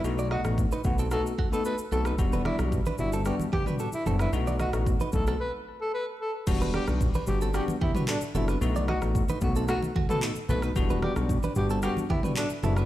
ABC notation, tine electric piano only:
X:1
M:4/4
L:1/16
Q:1/4=112
K:Em
V:1 name="Tine electric piano"
[A,B,^DF]3 [A,B,DF] z2 [A,B,DF]2 [A,B,DF]2 z [A,B,DF] z2 [A,B,DF]2 | [G,B,DF]3 [G,B,DF] z2 [G,B,DF]2 [G,B,DF]2 z [G,B,DF] z2 [G,B,DF]2 | [A,B,^DF]3 [A,B,DF] z2 [A,B,DF]2 z8 | [G,B,DF]3 [G,B,DF] z2 [G,B,DF]2 [G,B,DF]2 z [G,B,DF] z2 [G,B,DF]2 |
[A,B,^DF]3 [A,B,DF] z2 [A,B,DF]2 [A,B,DF]2 z [A,B,DF] z2 [A,B,DF]2 | [G,B,DF]3 [G,B,DF] z2 [G,B,DF]2 [G,B,DF]2 z [G,B,DF] z2 [G,B,DF]2 |]